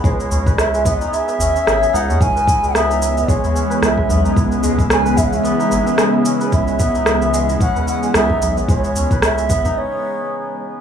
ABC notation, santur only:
X:1
M:4/4
L:1/16
Q:"Swing 16ths" 1/4=111
K:C#m
V:1 name="Santur"
G, E C B E G, B, D E B, C C G G D C | C B E G, B, D E B, G, E C B E G, B, D | E B, G, E C B E G, B, D E B, G, E C B | E G, B, D E B, G, E C B E G, B, D E B, |
G, E C B E G, B, D z8 |]